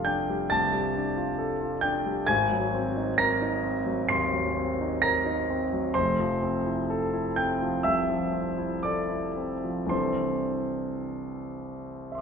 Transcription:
0.00 0.47 F1 soft
0.00 0.30 G3 soft
0.00 0.06 D4 soft
0.00 1.16 F4 soft
0.00 1.38 A4 soft
0.00 2.31 F5 medium
0.00 2.31 F6 medium
0.05 0.42 D4 soft
0.05 0.48 G5 medium
0.05 0.50 G6 medium
0.30 0.65 G3 soft
0.50 0.87 C2 soft
0.50 1.80 A5 medium
0.50 1.83 A6 medium
0.73 1.08 G3 soft
0.95 1.30 D4 soft
1.16 1.52 F4 soft
1.38 1.74 A4 soft
1.60 1.97 F4 soft
1.81 2.19 D4 soft
1.81 2.25 G5 medium
1.81 2.28 G6 medium
2.06 2.29 G3 soft
2.27 4.06 G#1 medium
2.27 3.15 G#5 medium
2.27 3.19 G#6 medium
2.52 2.89 F#3 soft
2.74 3.10 C4 soft
2.97 3.33 D#4 soft
3.18 3.56 A#4 soft
3.18 4.06 A#5 medium
3.18 4.09 A#6 medium
3.42 3.78 D#4 soft
3.64 4.01 C4 soft
3.86 4.23 F#3 soft
4.09 4.48 D#2 soft
4.09 4.99 C6 medium
4.09 5.03 C7 medium
4.33 4.71 F#3 soft
4.57 4.94 C4 soft
4.81 5.18 D#4 soft
5.02 5.40 A#4 soft
5.02 5.92 A#5 medium
5.02 5.95 A#6 medium
5.26 5.63 D#4 soft
5.50 5.87 C4 soft
5.73 5.96 F#3 soft
5.94 7.81 F1 medium
5.94 7.32 C5 medium
5.94 7.36 C6 medium
6.20 6.57 F3 soft
6.42 6.80 C4 soft
6.66 7.03 E4 soft
6.90 7.28 A4 soft
7.13 7.52 E4 soft
7.36 7.76 C4 soft
7.36 7.82 G5 medium
7.36 7.85 G6 medium
7.61 8.00 F3 soft
7.83 8.24 C2 soft
7.83 8.80 E5 medium
7.83 8.83 E6 medium
8.09 8.49 F3 soft
8.33 8.74 C4 soft
8.58 8.99 E4 soft
8.83 9.26 A4 soft
8.83 9.87 D5 soft
8.83 9.90 D6 medium
9.09 9.52 E4 soft
9.36 9.80 C4 soft
9.64 9.91 F3 soft
9.86 12.21 C2 soft
9.86 12.21 E3 soft
9.86 12.21 C4 soft
9.86 12.21 D4 soft
9.86 12.13 C6 medium
9.90 12.21 A4 soft
9.90 12.21 C5 medium
12.12 12.21 E5 soft
12.12 12.21 C6 soft
12.18 12.21 D6 soft

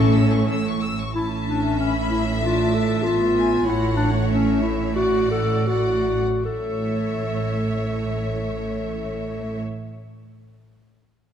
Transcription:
0.00 0.95 A1 medium
0.00 0.95 A2 medium
0.00 0.81 A3 medium
0.00 0.81 C#4 medium
0.00 0.83 C#4 medium
0.00 0.46 A4 medium
0.00 0.13 C#6 soft
0.14 0.31 E6 soft
0.31 0.48 C#6 soft
0.49 0.65 E6 soft
0.66 0.83 C#6 soft
0.83 1.00 E6 soft
1.00 1.17 C#6 soft
1.15 3.63 A1 soft
1.15 3.62 A2 soft
1.15 2.39 C#4 soft
1.15 1.30 E4 medium
1.15 3.63 E5 soft
1.15 1.76 A5 soft
1.48 1.79 D4 soft
1.79 1.94 C#4 medium
1.79 2.43 B5 soft
2.11 2.25 E4 soft
2.42 3.03 D4 soft
2.42 2.75 F4 medium
2.42 3.04 A5 soft
2.74 3.05 A4 medium
3.03 3.66 B3 soft
3.03 3.67 F4 medium
3.03 3.14 A5 soft
3.37 3.66 G#5 soft
3.66 6.17 A1 soft
3.66 6.17 A2 soft
3.66 4.96 A3 soft
3.66 3.96 E4 medium
3.66 4.94 C#5 soft
3.66 4.30 F#5 soft
3.96 4.11 D4 medium
4.29 4.63 C#4 medium
4.29 4.94 E5 soft
4.62 4.95 E4 medium
4.95 5.67 A3 soft
4.95 5.30 F#4 medium
4.95 5.66 D5 soft
4.95 5.66 F#5 soft
5.31 5.69 A4 medium
5.67 6.21 F#3 soft
5.67 6.45 F#4 soft
5.67 6.20 D5 soft
5.67 6.20 F#5 soft
6.45 9.57 A1 soft
6.45 9.56 A2 soft
6.45 9.58 A3 soft
6.45 9.57 A4 soft
6.45 9.58 C#5 soft
6.45 9.57 E5 soft

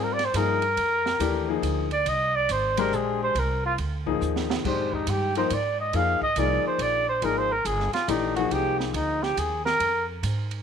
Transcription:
0.00 0.33 G#2 medium
0.00 0.17 G3 medium
0.00 0.17 C4 medium
0.00 0.17 F4 soft
0.00 0.17 A#4 medium
0.00 0.15 A#4 medium
0.13 0.27 D5 loud
0.19 snare soft
0.19 ride soft
0.25 0.37 C5 medium
0.34 0.76 G2 medium
0.34 0.60 F3 medium
0.34 0.60 A#3 medium
0.34 0.60 D#4 medium
0.34 0.60 G#4 medium
0.34 1.64 A#4 loud
0.34 hi-hat pedal soft
0.34 ride medium
0.62 ride soft
0.77 1.19 F2 medium
0.77 ride medium
1.06 snare medium
1.19 1.62 D#2 loud
1.19 1.45 E3 medium
1.19 1.46 A3 medium
1.19 1.46 D4 medium
1.19 1.46 G4 medium
1.19 hi-hat pedal medium
1.19 ride medium
1.48 1.86 F3 medium
1.48 1.86 A#3 medium
1.48 1.86 D#4 medium
1.48 1.86 G#4 medium
1.62 2.05 D2 medium
1.62 hi-hat pedal soft
1.62 ride medium
1.91 2.10 D5 loud
1.91 ride soft
2.06 2.48 C2 medium
2.06 2.37 D#5 loud
2.06 ride medium
2.36 2.53 D5 loud
2.49 2.91 G#1 medium
2.49 2.81 C5 loud
2.49 hi-hat pedal medium
2.49 ride medium
2.77 3.33 G#3 medium
2.77 3.33 D4 medium
2.77 3.33 G4 medium
2.77 2.96 A#4 loud
2.77 3.33 C5 medium
2.77 ride medium
2.92 3.34 A#1 medium
2.92 3.22 G#4 medium
2.92 hi-hat pedal medium
3.23 3.41 C5 loud
3.35 3.77 C2 medium
3.35 ride medium
3.39 3.65 A#4 medium
3.66 3.74 F4 loud
3.78 4.20 D2 medium
3.78 ride medium
4.06 4.61 F3 medium
4.06 4.62 A#3 medium
4.06 4.62 D#4 medium
4.06 4.62 G#4 medium
4.06 kick medium
4.21 4.63 D#2 medium
4.21 hi-hat pedal medium
4.36 snare medium
4.50 snare medium
4.64 5.06 F2 medium
4.64 5.30 D#3 medium
4.64 5.30 G#3 medium
4.64 5.30 D4 medium
4.64 5.30 G4 medium
4.64 4.95 C5 medium
4.64 kick medium
4.64 crash medium
4.93 5.11 D#4 medium
4.93 kick soft
5.07 5.49 G2 medium
5.07 5.37 G4 medium
5.07 hi-hat pedal medium
5.07 ride medium
5.35 5.49 F3 medium
5.35 5.50 A#3 medium
5.35 5.50 D#4 medium
5.35 5.50 A#4 medium
5.35 5.55 C5 loud
5.35 ride soft
5.50 5.92 G#2 medium
5.50 5.79 D5 medium
5.50 hi-hat pedal medium
5.50 ride medium
5.80 5.97 D#5 loud
5.93 6.19 F2 medium
5.93 6.19 F3 medium
5.93 6.19 A#3 medium
5.93 6.19 D#4 medium
5.93 6.19 G#4 medium
5.93 6.22 F5 loud
5.93 ride medium
6.21 6.40 D#5 loud
6.21 muted upright bass stroke soft
6.21 kick medium
6.36 6.62 C2 loud
6.36 7.02 F3 medium
6.36 7.02 A#3 medium
6.36 7.02 D#4 medium
6.36 7.03 G#4 medium
6.36 6.66 D5 loud
6.36 hi-hat pedal medium
6.36 ride medium
6.67 6.84 C5 medium
6.78 7.21 A#1 medium
6.78 7.08 D5 loud
6.78 ride medium
7.09 7.26 C5 medium
7.22 7.64 G#1 medium
7.22 7.48 F3 medium
7.22 7.48 A#3 medium
7.22 7.48 D#4 medium
7.22 7.48 G#4 medium
7.22 7.39 A#4 medium
7.22 ride medium
7.38 7.54 C5 loud
7.52 7.68 A#4 medium
7.65 7.91 G1 medium
7.65 7.93 G#4 medium
7.65 hi-hat pedal medium
7.65 ride medium
7.80 snare soft
7.93 8.11 F4 medium
7.93 snare soft
7.93 ride soft
8.08 8.50 A#1 loud
8.08 8.33 E3 medium
8.08 8.34 A3 medium
8.08 8.34 D4 medium
8.08 8.35 D#4 medium
8.08 8.34 G4 medium
8.08 hi-hat pedal medium
8.08 ride medium
8.36 8.50 F3 medium
8.36 8.51 A#3 medium
8.36 8.51 D#4 medium
8.36 8.54 F#4 medium
8.36 8.51 G#4 medium
8.36 ride soft
8.51 8.93 C2 medium
8.51 9.72 F3 medium
8.51 9.72 A#3 medium
8.51 9.72 D#4 medium
8.51 8.79 G4 loud
8.51 9.72 G#4 medium
8.51 ride medium
8.80 8.96 C4 soft
8.80 snare soft
8.94 9.36 D2 medium
8.94 9.24 D#4 medium
8.94 ride medium
9.23 9.40 G4 loud
9.23 snare soft
9.37 9.79 D#2 medium
9.37 9.65 G#4 medium
9.37 hi-hat pedal medium
9.37 ride medium
9.65 10.05 A#4 loud
9.65 snare medium
9.80 10.22 F2 medium
9.80 ride medium
10.23 10.63 G#2 medium
10.23 hi-hat pedal medium
10.23 ride medium
10.51 ride soft

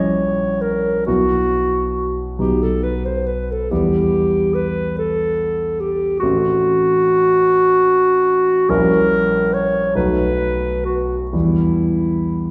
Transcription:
0.00 1.09 A#1 soft
0.00 1.09 G3 soft
0.00 1.09 C#4 soft
0.00 1.08 E4 soft
0.00 0.63 C#5 soft
0.61 1.06 A#4 medium
1.07 2.36 B1 soft
1.07 2.35 F#3 soft
1.07 2.35 B3 soft
1.07 2.36 E4 soft
1.07 2.08 F#4 medium
2.39 3.67 B1 soft
2.39 3.67 F#3 soft
2.39 3.67 B3 soft
2.39 3.67 D#4 soft
2.39 2.64 G4 soft
2.63 2.85 A4 soft
2.84 3.07 B4 soft
3.06 3.28 C5 soft
3.26 3.53 B4 soft
3.52 3.72 A4 soft
3.71 6.19 E2 soft
3.71 6.19 G3 soft
3.71 6.19 B3 soft
3.71 6.19 E4 soft
3.71 4.56 G4 medium
4.55 4.97 B4 medium
4.99 5.82 A4 medium
5.81 6.19 G4 medium
6.20 8.66 A1 soft
6.20 8.65 A3 soft
6.20 8.65 C4 soft
6.20 8.71 F#4 medium
6.20 8.65 F#4 soft
8.69 9.92 A#1 soft
8.69 9.92 G3 soft
8.69 9.92 C#4 soft
8.69 9.92 E4 soft
8.69 9.55 A#4 medium
9.54 9.95 C#5 medium
9.95 11.30 B1 soft
9.95 11.30 F#3 soft
9.95 11.30 A3 soft
9.95 11.30 D#4 soft
9.95 10.87 B4 medium
10.85 11.18 F#4 soft
11.31 12.51 E2 soft
11.31 12.51 E3 soft
11.31 12.51 G3 soft
11.31 12.51 E4 medium
11.31 12.51 E4 soft

